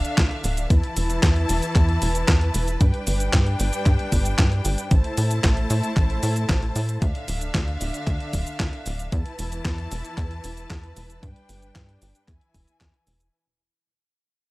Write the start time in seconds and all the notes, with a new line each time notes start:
Already playing: D3 D4 E5 F5
0.05 closed hi-hat, cabasa
0.18 D2, kick, snare, clap, closed hi-hat, cabasa
0.31 closed hi-hat
0.44 D1, open hi-hat, cabasa
0.57 closed hi-hat, cabasa
0.70 E2 E3 E4 B4 A5, kick, closed hi-hat, cabasa
0.83 closed hi-hat
0.97 E1, open hi-hat, cabasa
1.10 closed hi-hat, cabasa
1.23 E2, kick, snare, clap, closed hi-hat, cabasa
1.36 closed hi-hat
1.49 E1, open hi-hat, cabasa
1.62 closed hi-hat, cabasa
1.75 E2, kick, clap, closed hi-hat, cabasa
1.89 closed hi-hat
2.02 E1, open hi-hat, cabasa
2.15 closed hi-hat, cabasa
2.28 E2, kick, snare, clap, closed hi-hat, cabasa
2.41 closed hi-hat
2.54 E1, open hi-hat, cabasa
2.68 closed hi-hat, cabasa
2.81 G2 G3 D4 G5, kick, closed hi-hat, cabasa
2.94 closed hi-hat
3.07 G1, open hi-hat, cabasa
3.20 closed hi-hat, cabasa
3.33 G2, kick, snare, clap, closed hi-hat, cabasa
3.46 closed hi-hat
3.60 G1, open hi-hat, cabasa
3.73 closed hi-hat, cabasa
3.86 G2, kick, clap, closed hi-hat, cabasa
3.99 closed hi-hat
4.12 G1, kick, open hi-hat, cabasa
4.25 closed hi-hat, cabasa
4.39 G2, kick, snare, clap, closed hi-hat, cabasa
4.52 closed hi-hat
4.65 G1, open hi-hat, cabasa
4.78 closed hi-hat, cabasa
4.91 A1 A3 E4 C5 A5, kick, closed hi-hat, cabasa
5.04 closed hi-hat
5.17 A2, open hi-hat, cabasa
5.31 closed hi-hat, cabasa
5.44 A1, kick, snare, clap, closed hi-hat, cabasa
5.57 closed hi-hat
5.70 A2, open hi-hat, cabasa
5.83 closed hi-hat, cabasa
5.97 A1, kick, clap, closed hi-hat, cabasa
6.10 closed hi-hat
6.23 A2, open hi-hat, cabasa
6.36 closed hi-hat, cabasa
6.49 A1, kick, snare, clap, closed hi-hat, cabasa
6.63 closed hi-hat
6.76 A2, open hi-hat, cabasa
6.89 closed hi-hat, cabasa
7.02 D2 D3 D4 E5 F5, kick, closed hi-hat, cabasa
7.15 closed hi-hat
7.28 D1, open hi-hat, cabasa
7.41 closed hi-hat, cabasa
7.55 D2, kick, snare, clap, closed hi-hat, cabasa
7.68 closed hi-hat
7.81 D1, open hi-hat, cabasa
7.94 closed hi-hat, cabasa
8.07 D2, kick, clap, closed hi-hat, cabasa
8.20 closed hi-hat
8.33 D1, kick, open hi-hat, cabasa
8.47 closed hi-hat, cabasa
8.60 D2, kick, snare, clap, closed hi-hat, cabasa
8.73 closed hi-hat
8.86 D1, open hi-hat, cabasa
8.99 closed hi-hat, cabasa
9.12 E2 E3 E4 B4 A5, kick, closed hi-hat, cabasa
9.26 closed hi-hat
9.39 E1, open hi-hat, cabasa
9.52 closed hi-hat, cabasa
9.65 E2, kick, snare, clap, closed hi-hat, cabasa
9.78 closed hi-hat
9.91 E1, open hi-hat, cabasa
10.05 closed hi-hat, cabasa
10.18 E2, kick, clap, closed hi-hat, cabasa
10.31 closed hi-hat
10.44 E1, open hi-hat, cabasa
10.57 closed hi-hat, cabasa
10.70 E2, kick, snare, clap, closed hi-hat, cabasa
10.84 closed hi-hat
10.97 E1, open hi-hat, cabasa
11.10 closed hi-hat, cabasa
11.23 G2 G3 D4 G5, kick, closed hi-hat, cabasa
11.36 closed hi-hat
11.49 G1, open hi-hat, cabasa
11.62 closed hi-hat, cabasa
11.76 G2, kick, snare, clap, closed hi-hat, cabasa
11.89 closed hi-hat
12.02 G1, open hi-hat, cabasa
12.15 closed hi-hat, cabasa
12.28 E2 E3 E4 G#5, kick, clap, closed hi-hat, cabasa
12.41 closed hi-hat
12.54 E1, kick, open hi-hat, cabasa
12.68 closed hi-hat, cabasa
12.81 E2, kick, snare, clap, closed hi-hat, cabasa
12.94 closed hi-hat
13.07 E1, open hi-hat, cabasa
13.20 closed hi-hat, cabasa